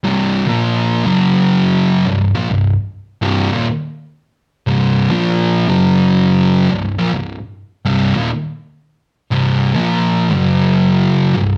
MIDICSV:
0, 0, Header, 1, 2, 480
1, 0, Start_track
1, 0, Tempo, 579710
1, 38, Time_signature, 4, 2, 24, 8
1, 9582, End_track
2, 0, Start_track
2, 0, Title_t, "Distorted electric guitar"
2, 0, Program_c, 0, 30
2, 34, Note_on_c, 0, 36, 95
2, 39, Note_on_c, 0, 43, 108
2, 44, Note_on_c, 0, 48, 120
2, 387, Note_off_c, 0, 36, 0
2, 390, Note_off_c, 0, 43, 0
2, 392, Note_off_c, 0, 48, 0
2, 393, Note_on_c, 0, 46, 95
2, 400, Note_on_c, 0, 53, 110
2, 406, Note_on_c, 0, 58, 111
2, 865, Note_off_c, 0, 46, 0
2, 868, Note_on_c, 0, 42, 84
2, 869, Note_off_c, 0, 53, 0
2, 872, Note_off_c, 0, 58, 0
2, 873, Note_on_c, 0, 49, 88
2, 881, Note_on_c, 0, 54, 88
2, 1701, Note_off_c, 0, 42, 0
2, 1704, Note_off_c, 0, 49, 0
2, 1707, Note_on_c, 0, 36, 69
2, 1708, Note_off_c, 0, 54, 0
2, 1711, Note_on_c, 0, 43, 77
2, 1901, Note_off_c, 0, 36, 0
2, 1903, Note_off_c, 0, 43, 0
2, 1943, Note_on_c, 0, 46, 104
2, 1949, Note_on_c, 0, 53, 108
2, 2060, Note_off_c, 0, 46, 0
2, 2062, Note_off_c, 0, 53, 0
2, 2068, Note_on_c, 0, 36, 61
2, 2069, Note_on_c, 0, 43, 67
2, 2261, Note_off_c, 0, 36, 0
2, 2261, Note_off_c, 0, 43, 0
2, 2663, Note_on_c, 0, 36, 97
2, 2669, Note_on_c, 0, 43, 108
2, 2673, Note_on_c, 0, 48, 121
2, 2899, Note_off_c, 0, 36, 0
2, 2901, Note_off_c, 0, 43, 0
2, 2904, Note_off_c, 0, 48, 0
2, 2909, Note_on_c, 0, 39, 94
2, 2915, Note_on_c, 0, 46, 102
2, 3021, Note_off_c, 0, 39, 0
2, 3025, Note_off_c, 0, 46, 0
2, 3867, Note_on_c, 0, 36, 100
2, 3874, Note_on_c, 0, 43, 102
2, 3879, Note_on_c, 0, 48, 110
2, 4219, Note_off_c, 0, 36, 0
2, 4223, Note_off_c, 0, 43, 0
2, 4224, Note_on_c, 0, 46, 96
2, 4226, Note_off_c, 0, 48, 0
2, 4230, Note_on_c, 0, 53, 107
2, 4234, Note_on_c, 0, 58, 95
2, 4698, Note_off_c, 0, 46, 0
2, 4701, Note_off_c, 0, 53, 0
2, 4703, Note_off_c, 0, 58, 0
2, 4703, Note_on_c, 0, 42, 72
2, 4707, Note_on_c, 0, 49, 99
2, 4712, Note_on_c, 0, 54, 101
2, 5538, Note_off_c, 0, 42, 0
2, 5540, Note_off_c, 0, 49, 0
2, 5542, Note_off_c, 0, 54, 0
2, 5548, Note_on_c, 0, 36, 63
2, 5553, Note_on_c, 0, 43, 69
2, 5740, Note_off_c, 0, 36, 0
2, 5742, Note_off_c, 0, 43, 0
2, 5785, Note_on_c, 0, 46, 100
2, 5790, Note_on_c, 0, 53, 117
2, 5899, Note_off_c, 0, 46, 0
2, 5902, Note_off_c, 0, 53, 0
2, 5909, Note_on_c, 0, 36, 68
2, 5915, Note_on_c, 0, 43, 76
2, 6101, Note_off_c, 0, 36, 0
2, 6103, Note_off_c, 0, 43, 0
2, 6503, Note_on_c, 0, 36, 95
2, 6509, Note_on_c, 0, 43, 95
2, 6514, Note_on_c, 0, 48, 106
2, 6739, Note_off_c, 0, 36, 0
2, 6742, Note_off_c, 0, 43, 0
2, 6744, Note_off_c, 0, 48, 0
2, 6745, Note_on_c, 0, 39, 93
2, 6753, Note_on_c, 0, 46, 101
2, 6860, Note_off_c, 0, 39, 0
2, 6864, Note_off_c, 0, 46, 0
2, 7707, Note_on_c, 0, 36, 106
2, 7714, Note_on_c, 0, 43, 100
2, 7720, Note_on_c, 0, 48, 109
2, 8063, Note_off_c, 0, 36, 0
2, 8066, Note_off_c, 0, 43, 0
2, 8070, Note_off_c, 0, 48, 0
2, 8070, Note_on_c, 0, 46, 93
2, 8072, Note_on_c, 0, 53, 104
2, 8077, Note_on_c, 0, 58, 100
2, 8551, Note_off_c, 0, 46, 0
2, 8551, Note_on_c, 0, 42, 85
2, 8559, Note_off_c, 0, 53, 0
2, 8559, Note_on_c, 0, 49, 94
2, 8563, Note_off_c, 0, 58, 0
2, 8563, Note_on_c, 0, 54, 93
2, 9388, Note_off_c, 0, 42, 0
2, 9393, Note_off_c, 0, 49, 0
2, 9395, Note_off_c, 0, 54, 0
2, 9398, Note_on_c, 0, 36, 74
2, 9401, Note_on_c, 0, 43, 75
2, 9582, Note_off_c, 0, 36, 0
2, 9582, Note_off_c, 0, 43, 0
2, 9582, End_track
0, 0, End_of_file